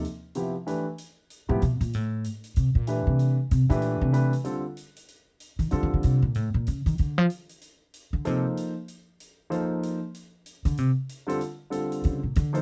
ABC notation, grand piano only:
X:1
M:4/4
L:1/8
Q:"Swing" 1/4=190
K:Gm
V:1 name="Grand piano"
z2 [C,F,=B,=EG] z [=E,A,DG=B] z3 | z [C,F,=B,=EG] z6 | z2 [=E,A,DG=B]3 z2 [E,A,DGB]- | [=E,A,DG=B]2 [E,A,DGB] z [D,G,CFA] z3 |
[K:Bb] z4 [D,G,CFA]3 z | z8 | z4 [F,B,EAc]3 z | z4 [F,B,EAc]3 z |
z6 z [D,G,CFA] | z2 [D,G,CFA]3 z2 [F,B,EAc] |]